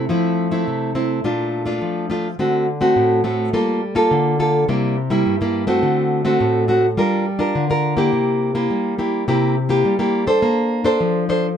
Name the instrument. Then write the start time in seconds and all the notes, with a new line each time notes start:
nylon-string guitar
0.09 F3 A3 C4 E4
0.51 A3 C4 E4
0.67 C3
0.95 A3 C4 E4
1.24 A#2 A3 D4 F4
1.66 A3 D4 F4
1.82 F3
2.10 A3 D4 F4
2.39 D3 A3 C4 F#4
2.81 A3 C4 F#4
2.96 A2
3.24 A3 C4 F#4
3.53 G3 A#3 F4 A4
3.95 A#3 F4 A4
4.11 D3
4.39 A#3 F4 A4
4.68 C3 G3 A#3 E4
5.10 G3 A#3 E4
5.26 G2
5.41 G3 A#3 E4
5.67 A3 C4 F#4
5.83 D3
6.25 A3 C4 F#4
6.40 A2
6.68 A3 C4 F#4
6.97 G3 D4 F4 A#4
7.39 D4 F4 A#4
7.55 D3
7.70 D4 F4 A#4
7.97 A#3 E4 G4
8.13 C3
8.55 A#3 E4 G4
8.70 G3
8.98 A#3 E4 G4
9.28 C3 A#3 E4 G4
9.69 A#3 E4 G4
9.85 G3
9.99 A#3 E4 G4
10.27 D4 A4 C5
10.42 A#3
10.84 D4 A4 C5
11.00 F3
11.29 D4 A4 C5